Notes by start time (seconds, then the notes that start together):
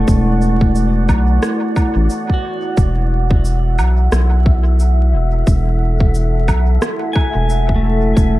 Already playing: A3 E4 B4 D5 F#5 C#6
0.08 E1, kick, shaker
0.42 shaker
0.61 kick
0.75 shaker
1.09 B1, kick, low woodblock, shaker
1.43 cross-stick, shaker
1.76 kick, low woodblock, shaker
1.96 A1
2.10 shaker
2.30 kick
2.34 F#4
2.77 E1 E5, kick, shaker
3.31 kick
3.45 shaker
3.58 A4
3.78 B1, low woodblock, shaker
4.12 B1, cross-stick, shaker
4.46 kick
4.80 shaker
5.13 E1
5.47 E1, kick, shaker
6.00 kick
6.15 shaker
6.48 B1, kick, low woodblock, shaker
6.82 cross-stick, shaker
7.13 G#5, kick, low woodblock
7.35 E1
7.50 shaker
7.69 kick
7.76 A3
8.17 E1, kick, shaker